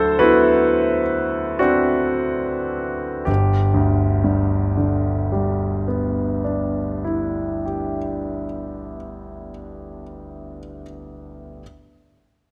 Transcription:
Already playing: D2 F#3 A4 C5
0.19 B3 E4 F#4 B4
1.59 C4 D4 F#4
3.25 G1 G4
3.74 D2
4.24 G2
4.77 D3
5.32 G3
5.88 B3
6.44 D4
7.05 E4
7.66 G4

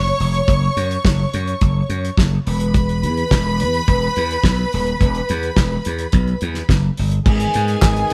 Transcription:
Already playing: F#1 C#5 C#6
0.06 closed hi-hat
0.20 F1, open hi-hat
0.34 closed hi-hat
0.48 F#1, kick, closed hi-hat
0.77 F#2, closed hi-hat
0.91 closed hi-hat
1.05 F#1, kick, snare
1.34 F#2, closed hi-hat
1.48 closed hi-hat
1.61 F#1, kick, closed hi-hat
1.89 F#2, closed hi-hat
2.05 closed hi-hat
2.18 F#1, kick, snare
2.46 E1 B4 B5, open hi-hat
2.60 closed hi-hat
2.74 kick, closed hi-hat
2.89 closed hi-hat
3.03 E2, closed hi-hat
3.17 closed hi-hat
3.31 E1, kick, snare
3.60 E2, closed hi-hat
3.74 closed hi-hat
3.88 E1, kick, closed hi-hat
4.16 E2, closed hi-hat
4.31 closed hi-hat
4.44 B1, kick, snare
4.72 D#1, open hi-hat
4.87 closed hi-hat
5.01 E1, kick, closed hi-hat
5.15 closed hi-hat
5.29 E2, closed hi-hat
5.43 closed hi-hat
5.56 E1, kick, snare
5.85 E2, closed hi-hat
5.98 closed hi-hat
6.12 B1, kick, closed hi-hat
6.27 closed hi-hat
6.41 E2, closed hi-hat
6.55 snare, closed hi-hat
6.69 F#1, kick, snare
6.97 G1, open hi-hat
7.12 closed hi-hat
7.26 G#1 D#3 B3 G#4 G#5, kick, crash
7.40 closed hi-hat
7.54 G#2, closed hi-hat
7.68 closed hi-hat
7.82 G#1, kick, snare, clap
7.96 closed hi-hat
8.10 closed hi-hat

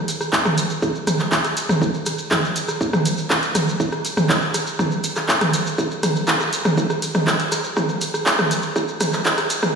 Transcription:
0.08 open hi-hat, maracas
0.21 cross-stick, maracas
0.33 kick, clap, maracas
0.45 cross-stick, mid tom, maracas
0.58 open hi-hat, maracas
0.70 maracas
0.82 kick, cross-stick, maracas
0.95 maracas
1.07 cross-stick, open hi-hat, mid tom, maracas
1.20 clap, maracas
1.32 kick, clap, maracas
1.45 cross-stick, open hi-hat, maracas
1.57 open hi-hat, maracas
1.69 cross-stick, mid tom, maracas
1.82 kick, maracas
1.94 maracas
2.06 cross-stick, open hi-hat, maracas
2.18 maracas
2.31 kick, cross-stick, clap, mid tom, maracas
2.45 maracas
2.56 open hi-hat, maracas
2.68 cross-stick, maracas
2.81 kick, maracas
2.93 cross-stick, mid tom, maracas
3.06 open hi-hat, maracas
3.18 maracas
3.30 kick, cross-stick, clap, maracas
3.43 open hi-hat, maracas
3.55 cross-stick, open hi-hat, mid tom, maracas
3.69 maracas
3.80 kick, maracas
3.92 cross-stick, maracas
4.05 open hi-hat, maracas
4.17 cross-stick, mid tom, maracas
4.29 kick, clap, maracas
4.42 maracas
4.54 cross-stick, open hi-hat, maracas
4.67 maracas
4.79 kick, cross-stick, mid tom, maracas
4.91 maracas
5.04 open hi-hat, maracas
5.16 cross-stick, clap, maracas
5.29 kick, clap, maracas
5.41 cross-stick, open hi-hat, mid tom, maracas
5.53 open hi-hat, maracas
5.66 maracas
5.78 kick, cross-stick, maracas
5.91 maracas
6.03 cross-stick, open hi-hat, mid tom, maracas
6.16 maracas
6.27 kick, clap, maracas
6.40 cross-stick, maracas
6.53 open hi-hat, maracas
6.65 cross-stick, mid tom, maracas
6.77 kick, maracas
6.90 cross-stick, maracas
7.02 open hi-hat, maracas
7.15 cross-stick, mid tom, maracas
7.27 kick, clap, maracas
7.40 open hi-hat, maracas
7.52 cross-stick, open hi-hat, maracas
7.64 maracas
7.77 kick, cross-stick, mid tom, maracas
7.89 maracas
8.01 open hi-hat, maracas
8.14 cross-stick, maracas
8.26 kick, clap, maracas
8.39 cross-stick, mid tom, maracas
8.51 open hi-hat, maracas
8.63 maracas
8.76 kick, cross-stick, maracas
8.88 maracas
9.01 cross-stick, open hi-hat, mid tom, maracas
9.13 clap, maracas
9.25 kick, clap, maracas
9.38 cross-stick, open hi-hat, maracas
9.50 open hi-hat, maracas
9.63 cross-stick, mid tom, maracas

